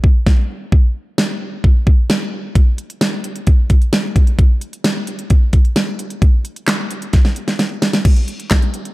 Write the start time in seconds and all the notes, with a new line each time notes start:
0.04 kick
0.27 kick, snare
0.72 kick
1.18 snare
1.64 kick
1.87 kick
2.10 snare
2.55 kick, closed hi-hat
2.78 closed hi-hat
2.90 closed hi-hat
3.01 snare, closed hi-hat
3.24 closed hi-hat
3.36 closed hi-hat
3.47 kick, closed hi-hat
3.70 kick, closed hi-hat
3.82 closed hi-hat
3.93 snare, closed hi-hat
4.16 kick, closed hi-hat
4.27 closed hi-hat
4.39 kick, closed hi-hat
4.61 closed hi-hat
4.73 closed hi-hat
4.84 snare, closed hi-hat
5.07 closed hi-hat
5.19 closed hi-hat
5.30 kick, closed hi-hat
5.53 kick, closed hi-hat
5.65 closed hi-hat
5.76 snare, closed hi-hat
5.99 closed hi-hat
6.10 closed hi-hat
6.22 kick, closed hi-hat
6.45 closed hi-hat
6.56 closed hi-hat
6.68 snare, clap, closed hi-hat
6.91 closed hi-hat
7.02 closed hi-hat
7.13 kick, snare, closed hi-hat
7.25 snare
7.36 closed hi-hat
7.48 snare, closed hi-hat
7.59 snare, closed hi-hat
7.82 snare, closed hi-hat
7.93 snare, closed hi-hat
8.05 kick, closed hi-hat, crash
8.16 closed hi-hat
8.28 closed hi-hat
8.40 closed hi-hat
8.51 kick, snare, clap, closed hi-hat
8.62 closed hi-hat
8.74 closed hi-hat
8.85 closed hi-hat